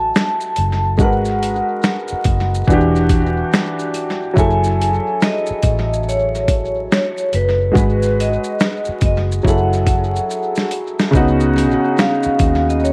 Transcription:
0.00 0.11 A1 medium
0.00 0.95 F#3 medium
0.00 0.96 E4 medium
0.00 0.97 F#4 medium
0.00 0.97 A4 medium
0.00 1.04 A5 loud
0.16 finger snap medium
0.16 snare loud
0.16 shaker medium
0.41 shaker soft
0.56 0.99 F#1 medium
0.56 closed hi-hat medium
0.56 shaker soft
0.97 1.60 G#1 loud
0.97 2.64 G#3 medium
0.97 2.65 F#4 medium
0.97 2.66 A#4 medium
0.97 kick loud
0.97 shaker medium
1.02 2.67 B4 medium
1.02 3.92 F#5 medium
1.25 shaker soft
1.43 closed hi-hat medium
1.43 shaker soft
1.83 finger snap medium
1.83 snare loud
1.83 shaker medium
2.08 shaker soft
2.12 muted fingered electric bass stroke soft
2.24 2.63 F#1 medium
2.24 kick medium
2.24 closed hi-hat medium
2.24 shaker medium
2.54 shaker medium
2.67 3.42 E1 loud
2.67 4.33 E3 medium
2.67 4.34 D4 medium
2.67 4.35 F#4 medium
2.67 kick medium
2.67 shaker medium
2.73 4.36 G4 medium
2.96 shaker soft
3.09 kick medium
3.09 closed hi-hat medium
3.09 shaker medium
3.54 finger snap medium
3.54 snare loud
3.54 shaker medium
3.79 shaker soft
3.94 closed hi-hat medium
3.94 shaker soft
4.34 4.98 F#1 loud
4.34 7.69 F#3 medium
4.34 7.70 E4 medium
4.34 7.71 G#4 medium
4.34 kick medium
4.38 7.72 A4 medium
4.38 5.25 G#5 loud
4.38 shaker medium
4.64 shaker soft
4.82 closed hi-hat medium
4.82 shaker soft
5.22 6.10 D#5 loud
5.22 finger snap medium
5.22 snare loud
5.22 shaker medium
5.46 shaker medium
5.51 muted fingered electric bass stroke soft
5.63 6.87 A1 medium
5.63 kick medium
5.63 closed hi-hat medium
5.63 shaker soft
5.93 shaker medium
6.09 6.92 C#5 medium
6.09 shaker medium
6.35 shaker soft
6.48 kick medium
6.48 closed hi-hat medium
6.48 shaker medium
6.92 7.35 C#5 medium
6.92 finger snap medium
6.92 snare loud
6.92 shaker medium
7.18 shaker soft
7.33 7.70 F#1 medium
7.33 8.21 B4 medium
7.33 closed hi-hat medium
7.33 shaker soft
7.71 9.39 G#3 medium
7.71 9.40 F#4 medium
7.71 9.41 G#4 medium
7.75 8.36 G#1 loud
7.75 9.42 B4 medium
7.75 kick medium
7.75 shaker medium
8.02 shaker soft
8.20 9.04 D#5 medium
8.20 closed hi-hat medium
8.20 shaker soft
8.44 shaker medium
8.60 finger snap medium
8.60 snare loud
8.60 shaker medium
8.85 muted fingered electric bass stroke soft
8.85 shaker soft
9.01 9.39 F#1 medium
9.01 kick medium
9.01 closed hi-hat medium
9.01 shaker medium
9.06 9.24 D#5 medium
9.32 shaker medium
9.43 10.18 F#1 loud
9.43 11.09 F#3 medium
9.43 11.10 E4 medium
9.43 11.11 G#4 medium
9.43 kick medium
9.47 11.12 A4 medium
9.47 10.69 F#5 medium
9.47 shaker medium
9.73 shaker soft
9.87 kick medium
9.87 closed hi-hat medium
9.87 shaker soft
10.16 shaker soft
10.31 shaker medium
10.56 snare medium
10.56 shaker soft
10.71 closed hi-hat medium
10.71 shaker soft
10.99 snare medium
10.99 shaker soft
11.11 11.74 C#2 loud
11.11 12.93 C#3 medium
11.11 12.93 B3 medium
11.11 12.93 D#4 medium
11.11 kick loud
11.15 12.93 F#4 medium
11.15 shaker medium
11.40 shaker soft
11.58 closed hi-hat medium
11.58 shaker soft
11.98 12.70 F5 medium
11.98 finger snap medium
11.98 snare loud
11.98 shaker medium
12.23 muted fingered electric bass stroke soft
12.23 shaker medium
12.39 12.93 D#2 medium
12.39 kick medium
12.39 closed hi-hat medium
12.39 shaker medium
12.69 12.75 D#5 medium
12.69 shaker medium
12.84 12.93 C#5 medium
12.84 shaker medium

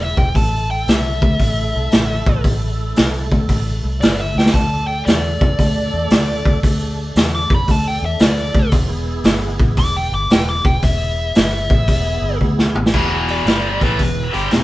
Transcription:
0.00 0.14 E1 medium
0.00 0.31 B3 medium
0.00 0.30 E4 medium
0.00 0.31 G#4 medium
0.00 0.18 E5 medium
0.17 0.34 E1 loud
0.17 0.34 G5 medium
0.17 kick loud
0.34 0.83 A1 medium
0.34 4.50 A3 medium
0.34 4.50 E4 medium
0.34 4.50 A4 medium
0.34 0.69 A5 loud
0.34 kick loud
0.34 open hi-hat medium
0.71 0.87 G5 loud
0.88 1.20 C2 loud
0.88 2.42 E5 loud
0.88 snare loud
0.88 open hi-hat medium
1.21 1.38 D2 loud
1.21 kick loud
1.40 1.72 A1 medium
1.40 kick medium
1.40 open hi-hat medium
1.76 1.91 C2 medium
1.91 2.24 A1 medium
1.91 snare loud
1.91 open hi-hat medium
2.26 2.43 A1 medium
2.26 kick loud
2.44 2.93 A1 medium
2.44 kick loud
2.44 open hi-hat medium
2.96 3.30 C2 loud
2.96 snare loud
2.96 open hi-hat medium
3.31 3.48 D2 loud
3.31 kick loud
3.48 3.81 A1 medium
3.48 kick medium
3.48 open hi-hat medium
3.84 4.00 C2 loud
4.01 4.34 G1 medium
4.01 4.19 D5 loud
4.01 snare loud
4.01 open hi-hat medium
4.19 4.36 E5 medium
4.35 4.52 D2 medium
4.35 4.54 G5 medium
4.35 snare medium
4.46 snare medium
4.52 5.03 D2 medium
4.52 8.68 A3 medium
4.52 8.68 D4 medium
4.52 8.68 A4 medium
4.52 4.87 A5 medium
4.52 kick medium
4.52 open hi-hat medium
4.87 5.05 G5 medium
5.05 5.39 E2 medium
5.05 6.59 D5 loud
5.05 snare loud
5.05 open hi-hat medium
5.41 5.58 F#2 loud
5.41 kick loud
5.59 5.91 D2 medium
5.59 kick medium
5.59 open hi-hat medium
5.94 6.10 E2 medium
6.10 6.43 D2 medium
6.10 snare loud
6.10 open hi-hat medium
6.45 6.62 D2 medium
6.45 kick loud
6.63 7.12 D2 medium
6.63 kick loud
6.63 open hi-hat medium
7.16 7.48 E2 medium
7.16 snare loud
7.16 open hi-hat medium
7.35 7.51 D6 medium
7.50 7.67 F#2 loud
7.50 kick loud
7.55 7.71 B5 medium
7.68 8.01 D2 medium
7.68 7.87 A5 medium
7.68 kick medium
7.68 open hi-hat medium
7.88 8.04 G5 loud
8.02 8.19 E2 medium
8.02 8.21 E5 loud
8.19 8.52 D2 medium
8.19 snare loud
8.19 open hi-hat medium
8.24 8.73 D5 loud
8.54 8.71 D2 medium
8.54 kick loud
8.70 9.21 E1 medium
8.70 8.89 C4 medium
8.70 8.89 F4 medium
8.70 8.89 A4 medium
8.70 kick loud
8.70 open hi-hat medium
8.88 12.88 B3 medium
8.88 12.88 E4 medium
8.88 12.88 G#4 medium
9.24 9.57 G1 medium
9.24 snare loud
9.24 open hi-hat medium
9.59 9.76 A1 loud
9.59 kick loud
9.77 10.09 E1 medium
9.77 9.95 D6 loud
9.77 kick medium
9.77 open hi-hat medium
9.97 10.13 G5 loud
10.12 10.29 G1 loud
10.12 10.30 D6 loud
10.30 10.63 E1 medium
10.30 10.48 G5 loud
10.30 snare loud
10.30 open hi-hat medium
10.49 10.65 D6 loud
10.65 10.81 E1 medium
10.65 10.82 G5 loud
10.65 kick loud
10.82 11.31 E1 loud
10.82 12.37 E5 loud
10.82 kick loud
10.82 open hi-hat medium
11.35 11.68 G1 loud
11.35 snare loud
11.35 open hi-hat medium
11.70 11.86 A1 loud
11.70 kick loud
11.88 12.20 E1 medium
11.88 kick medium
11.88 open hi-hat medium
12.22 12.39 G1 loud
12.41 12.73 D2 medium
12.41 kick medium
12.59 snare medium
12.75 12.92 A1 medium
12.75 mid tom medium
12.86 snare medium
12.92 13.43 E1 medium
12.92 13.45 E2 medium
12.92 13.46 B2 medium
12.92 13.46 E3 medium
12.92 13.11 C4 medium
12.92 13.10 F4 medium
12.92 13.10 A4 medium
12.92 kick loud
12.92 crash medium
13.10 14.64 B3 medium
13.10 14.64 E4 medium
13.10 14.64 G#4 medium
13.28 13.80 D5 medium
13.28 open hi-hat soft
13.45 13.78 G1 medium
13.45 13.79 G2 medium
13.45 13.80 D3 medium
13.45 13.80 G3 medium
13.45 snare loud
13.45 open hi-hat medium
13.81 13.98 A1 medium
13.81 13.99 A2 medium
13.81 13.99 E3 medium
13.81 13.99 A3 loud
13.81 14.33 B4 medium
13.81 kick loud
13.81 open hi-hat medium
13.99 14.31 E1 medium
13.99 14.27 E2 medium
13.99 14.27 B2 medium
13.99 kick medium
13.99 open hi-hat medium
14.33 14.51 G1 medium
14.33 14.51 G2 medium
14.33 14.51 D3 medium
14.33 14.51 G3 loud
14.33 14.51 G4 medium
14.33 open hi-hat soft
14.51 14.64 E1 medium
14.51 14.64 E2 medium
14.51 14.64 B2 medium
14.51 14.64 E4 medium
14.51 snare medium
14.51 open hi-hat medium

